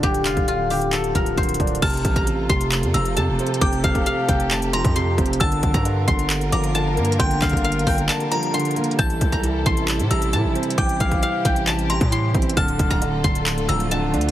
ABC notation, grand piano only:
X:1
M:4/4
L:1/8
Q:1/4=134
K:F
V:1 name="Grand piano" clef=bass
[D,F,D]2 D, D,2 F, D, D | C,2 C, C,2 F, C, C | C,2 C, C,2 F, C, C | D,2 D, D,2 F, D, B, |
D,2 D, D,2 F, D, B, | E,2 E, E,2 G, E, C | E,2 E, E,2 G, E, C | D,2 D, D,2 F, D, D |]